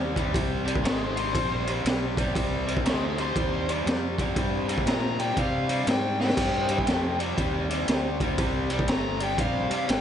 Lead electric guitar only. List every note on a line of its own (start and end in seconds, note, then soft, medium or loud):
0.86 1.02 C5 medium
0.86 1.03 D#5 medium
1.03 1.19 D#4 medium
1.03 1.18 C5 medium
1.19 1.68 C5 medium
2.86 3.03 C5 medium
2.86 3.04 D#5 medium
3.03 3.20 D#4 medium
3.03 3.20 C5 medium
3.21 3.69 C5 loud
4.88 5.19 A#5 medium
5.19 5.37 G5 medium
5.39 5.87 F5 medium
5.89 6.19 G5 medium
6.21 7.18 G5 loud
8.90 9.20 A#5 loud
9.23 9.40 G5 medium
9.40 9.88 F5 medium
9.91 10.01 G5 medium